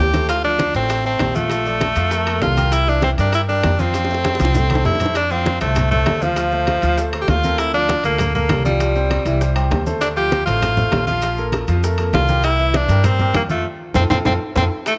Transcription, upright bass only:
0, 0, Header, 1, 2, 480
1, 0, Start_track
1, 0, Key_signature, -1, "major"
1, 0, Tempo, 303644
1, 463, Time_signature, 4, 2, 24, 8
1, 23687, End_track
2, 0, Start_track
2, 0, Title_t, "Upright bass"
2, 0, Program_c, 0, 32
2, 0, Note_on_c, 0, 38, 88
2, 1092, Note_off_c, 0, 38, 0
2, 1179, Note_on_c, 0, 33, 97
2, 1852, Note_off_c, 0, 33, 0
2, 1904, Note_on_c, 0, 34, 91
2, 3020, Note_off_c, 0, 34, 0
2, 3098, Note_on_c, 0, 41, 96
2, 3773, Note_off_c, 0, 41, 0
2, 3819, Note_on_c, 0, 36, 91
2, 4939, Note_off_c, 0, 36, 0
2, 5030, Note_on_c, 0, 43, 96
2, 5701, Note_off_c, 0, 43, 0
2, 5756, Note_on_c, 0, 41, 91
2, 6868, Note_off_c, 0, 41, 0
2, 6952, Note_on_c, 0, 36, 93
2, 7623, Note_off_c, 0, 36, 0
2, 7675, Note_on_c, 0, 41, 91
2, 8788, Note_off_c, 0, 41, 0
2, 8877, Note_on_c, 0, 36, 97
2, 9546, Note_off_c, 0, 36, 0
2, 9587, Note_on_c, 0, 38, 89
2, 10704, Note_off_c, 0, 38, 0
2, 10792, Note_on_c, 0, 38, 101
2, 11463, Note_off_c, 0, 38, 0
2, 11506, Note_on_c, 0, 38, 100
2, 12622, Note_off_c, 0, 38, 0
2, 12713, Note_on_c, 0, 38, 93
2, 13382, Note_off_c, 0, 38, 0
2, 13424, Note_on_c, 0, 36, 99
2, 14540, Note_off_c, 0, 36, 0
2, 14628, Note_on_c, 0, 36, 98
2, 15298, Note_off_c, 0, 36, 0
2, 15346, Note_on_c, 0, 38, 95
2, 16459, Note_off_c, 0, 38, 0
2, 16549, Note_on_c, 0, 33, 96
2, 17218, Note_off_c, 0, 33, 0
2, 17269, Note_on_c, 0, 34, 96
2, 18379, Note_off_c, 0, 34, 0
2, 18463, Note_on_c, 0, 41, 100
2, 19133, Note_off_c, 0, 41, 0
2, 19176, Note_on_c, 0, 36, 101
2, 20290, Note_off_c, 0, 36, 0
2, 20369, Note_on_c, 0, 43, 99
2, 21043, Note_off_c, 0, 43, 0
2, 21090, Note_on_c, 0, 41, 90
2, 21541, Note_off_c, 0, 41, 0
2, 22053, Note_on_c, 0, 41, 94
2, 22234, Note_off_c, 0, 41, 0
2, 22297, Note_on_c, 0, 41, 98
2, 22476, Note_off_c, 0, 41, 0
2, 22537, Note_on_c, 0, 41, 90
2, 22716, Note_off_c, 0, 41, 0
2, 23016, Note_on_c, 0, 41, 96
2, 23195, Note_off_c, 0, 41, 0
2, 23687, End_track
0, 0, End_of_file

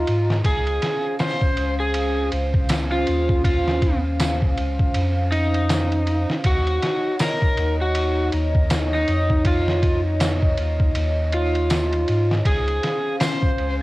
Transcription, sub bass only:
0, 0, Header, 1, 2, 480
1, 0, Start_track
1, 0, Tempo, 750000
1, 291, Time_signature, 4, 2, 24, 8
1, 8847, End_track
2, 0, Start_track
2, 0, Title_t, "Sub bass"
2, 0, Program_c, 0, 38
2, 52, Note_on_c, 0, 44, 96
2, 268, Note_off_c, 0, 44, 0
2, 287, Note_on_c, 0, 37, 94
2, 505, Note_off_c, 0, 37, 0
2, 1008, Note_on_c, 0, 37, 79
2, 1471, Note_off_c, 0, 37, 0
2, 1488, Note_on_c, 0, 37, 99
2, 1951, Note_off_c, 0, 37, 0
2, 1972, Note_on_c, 0, 39, 96
2, 2912, Note_off_c, 0, 39, 0
2, 2932, Note_on_c, 0, 37, 73
2, 3148, Note_off_c, 0, 37, 0
2, 3169, Note_on_c, 0, 41, 104
2, 4004, Note_off_c, 0, 41, 0
2, 4129, Note_on_c, 0, 39, 93
2, 4346, Note_off_c, 0, 39, 0
2, 4851, Note_on_c, 0, 39, 82
2, 5312, Note_off_c, 0, 39, 0
2, 5332, Note_on_c, 0, 39, 93
2, 5793, Note_off_c, 0, 39, 0
2, 5811, Note_on_c, 0, 41, 96
2, 6752, Note_off_c, 0, 41, 0
2, 6774, Note_on_c, 0, 39, 77
2, 6989, Note_off_c, 0, 39, 0
2, 7013, Note_on_c, 0, 39, 109
2, 7713, Note_off_c, 0, 39, 0
2, 7736, Note_on_c, 0, 44, 102
2, 7950, Note_off_c, 0, 44, 0
2, 7973, Note_on_c, 0, 37, 94
2, 8188, Note_off_c, 0, 37, 0
2, 8696, Note_on_c, 0, 37, 78
2, 8847, Note_off_c, 0, 37, 0
2, 8847, End_track
0, 0, End_of_file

